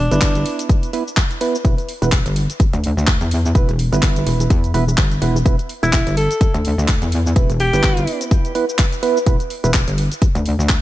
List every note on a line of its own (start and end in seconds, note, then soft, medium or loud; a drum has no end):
0.00 0.65 D4 medium
0.11 0.44 G1 medium
0.11 0.91 B3 medium
0.11 0.91 E4 medium
0.11 0.91 B4 loud
0.11 closed hi-hat soft
0.11 cabasa medium
0.21 kick loud
0.21 clap loud
0.21 closed hi-hat medium
0.21 cabasa medium
0.35 closed hi-hat medium
0.35 cabasa soft
0.46 open hi-hat loud
0.59 closed hi-hat medium
0.59 cabasa medium
0.69 kick loud
0.69 closed hi-hat medium
0.69 cabasa medium
0.83 closed hi-hat soft
0.83 cabasa soft
0.93 1.04 B3 loud
0.93 1.03 E4 medium
0.93 1.03 B4 loud
0.93 open hi-hat loud
1.08 cabasa medium
1.17 kick loud
1.17 clap loud
1.17 closed hi-hat medium
1.17 cabasa medium
1.31 closed hi-hat soft
1.31 cabasa soft
1.41 1.57 B3 medium
1.41 1.57 E4 medium
1.41 1.57 B4 loud
1.41 open hi-hat loud
1.55 cabasa medium
1.65 1.76 E1 loud
1.65 1.75 B3 medium
1.65 1.75 E4 medium
1.65 1.75 B4 medium
1.65 kick loud
1.65 closed hi-hat medium
1.65 cabasa medium
1.78 closed hi-hat soft
1.78 cabasa soft
1.89 open hi-hat loud
2.02 2.24 E1 medium
2.02 2.10 B3 medium
2.02 2.10 E4 medium
2.02 2.10 B4 loud
2.02 closed hi-hat soft
2.02 cabasa medium
2.12 kick loud
2.12 clap loud
2.12 closed hi-hat medium
2.12 cabasa medium
2.26 2.47 G1 loud
2.26 closed hi-hat medium
2.26 cabasa soft
2.36 open hi-hat loud
2.50 closed hi-hat medium
2.50 cabasa medium
2.60 kick loud
2.60 closed hi-hat medium
2.60 cabasa medium
2.73 2.95 D2 loud
2.73 closed hi-hat soft
2.73 cabasa soft
2.84 open hi-hat loud
2.97 3.19 D2 medium
2.97 cabasa medium
3.07 kick loud
3.07 clap loud
3.07 closed hi-hat medium
3.07 cabasa medium
3.21 3.53 E2 loud
3.21 closed hi-hat soft
3.21 cabasa soft
3.31 open hi-hat loud
3.46 cabasa medium
3.55 3.67 E1 loud
3.55 3.71 B3 medium
3.55 3.71 E4 medium
3.55 3.71 B4 medium
3.55 kick loud
3.55 closed hi-hat medium
3.55 cabasa medium
3.69 3.90 E1 loud
3.69 closed hi-hat soft
3.69 cabasa soft
3.79 open hi-hat loud
3.92 4.25 G1 loud
3.92 4.72 B3 medium
3.92 4.72 E4 medium
3.92 4.72 B4 medium
3.92 closed hi-hat soft
3.92 cabasa medium
4.02 kick loud
4.02 clap loud
4.02 closed hi-hat medium
4.02 cabasa medium
4.16 closed hi-hat soft
4.16 cabasa soft
4.27 4.49 E1 medium
4.27 open hi-hat loud
4.40 closed hi-hat soft
4.40 cabasa medium
4.50 4.73 E2 loud
4.50 kick loud
4.50 closed hi-hat medium
4.50 cabasa medium
4.64 closed hi-hat soft
4.64 cabasa soft
4.74 4.96 E1 loud
4.74 4.84 B3 loud
4.74 4.84 E4 medium
4.74 4.84 B4 loud
4.74 open hi-hat loud
4.88 cabasa medium
4.98 5.20 G1 medium
4.98 kick loud
4.98 clap loud
4.98 closed hi-hat medium
4.98 cabasa medium
5.12 closed hi-hat soft
5.12 cabasa soft
5.22 5.44 E1 loud
5.22 5.37 B3 loud
5.22 5.37 E4 medium
5.22 5.37 B4 loud
5.22 open hi-hat loud
5.36 cabasa medium
5.46 5.57 E1 loud
5.46 5.56 B3 medium
5.46 5.56 E4 medium
5.46 5.56 B4 medium
5.46 kick loud
5.46 closed hi-hat medium
5.46 cabasa medium
5.59 closed hi-hat soft
5.59 cabasa soft
5.69 open hi-hat loud
5.83 6.05 E1 medium
5.83 5.91 B3 medium
5.83 5.91 E4 medium
5.83 6.16 E4 medium
5.83 5.91 B4 loud
5.83 closed hi-hat soft
5.83 cabasa medium
5.93 kick loud
5.93 clap loud
5.93 closed hi-hat medium
5.93 cabasa medium
6.07 6.28 G1 loud
6.07 closed hi-hat soft
6.07 cabasa soft
6.17 6.54 A4 loud
6.17 open hi-hat loud
6.31 closed hi-hat soft
6.31 cabasa medium
6.41 kick loud
6.41 closed hi-hat medium
6.41 cabasa medium
6.54 6.76 D2 loud
6.54 closed hi-hat soft
6.54 cabasa soft
6.65 open hi-hat loud
6.78 7.00 D2 medium
6.78 cabasa medium
6.88 kick loud
6.88 clap loud
6.88 closed hi-hat medium
6.88 cabasa medium
7.02 7.34 E2 medium
7.02 closed hi-hat soft
7.02 cabasa soft
7.12 open hi-hat loud
7.26 cabasa medium
7.36 7.47 E1 medium
7.36 7.52 B3 medium
7.36 7.52 E4 medium
7.36 7.52 B4 medium
7.36 kick loud
7.36 closed hi-hat medium
7.36 cabasa medium
7.50 7.71 E1 loud
7.50 closed hi-hat soft
7.50 cabasa soft
7.60 8.27 G4 loud
7.60 open hi-hat loud
7.73 8.06 G1 medium
7.73 8.53 B3 medium
7.73 8.53 E4 medium
7.73 8.53 B4 medium
7.73 closed hi-hat soft
7.73 cabasa medium
7.83 kick loud
7.83 clap loud
7.83 closed hi-hat medium
7.83 cabasa medium
7.97 closed hi-hat medium
7.97 cabasa soft
8.07 open hi-hat loud
8.21 closed hi-hat medium
8.21 cabasa medium
8.31 kick loud
8.31 closed hi-hat medium
8.31 cabasa medium
8.45 closed hi-hat soft
8.45 cabasa soft
8.55 8.65 B3 loud
8.55 8.65 E4 medium
8.55 8.65 B4 loud
8.55 open hi-hat loud
8.69 cabasa medium
8.78 kick loud
8.78 clap loud
8.78 closed hi-hat medium
8.78 cabasa medium
8.93 closed hi-hat soft
8.93 cabasa soft
9.03 9.18 B3 loud
9.03 9.18 E4 medium
9.03 9.18 B4 loud
9.03 open hi-hat loud
9.17 cabasa medium
9.26 9.38 E1 medium
9.26 9.37 B3 medium
9.26 9.37 E4 medium
9.26 9.37 B4 medium
9.26 kick loud
9.26 closed hi-hat medium
9.26 cabasa medium
9.40 closed hi-hat soft
9.40 cabasa soft
9.50 open hi-hat loud
9.64 9.86 E1 loud
9.64 9.72 B3 medium
9.64 9.72 E4 medium
9.64 9.72 B4 loud
9.64 closed hi-hat soft
9.64 cabasa medium
9.74 kick loud
9.74 clap loud
9.74 closed hi-hat medium
9.74 cabasa medium
9.88 10.09 G1 loud
9.88 closed hi-hat medium
9.88 cabasa soft
9.98 open hi-hat loud
10.12 closed hi-hat medium
10.12 cabasa medium
10.22 kick loud
10.22 closed hi-hat medium
10.22 cabasa medium
10.35 10.57 D2 loud
10.35 closed hi-hat soft
10.35 cabasa soft
10.46 open hi-hat loud
10.59 10.81 D2 medium
10.59 cabasa medium
10.69 kick loud
10.69 clap loud
10.69 closed hi-hat medium
10.69 cabasa medium